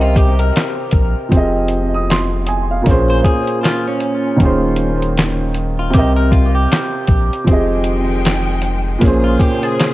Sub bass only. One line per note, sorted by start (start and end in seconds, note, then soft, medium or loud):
0.00 0.51 C2 loud
0.93 1.15 A#1 medium
1.32 2.82 F1 loud
2.87 3.22 A#1 loud
4.40 5.96 D#1 loud
5.95 6.67 C2 medium
7.08 7.30 A#1 medium
7.47 8.97 F1 loud
9.02 9.37 A#1 loud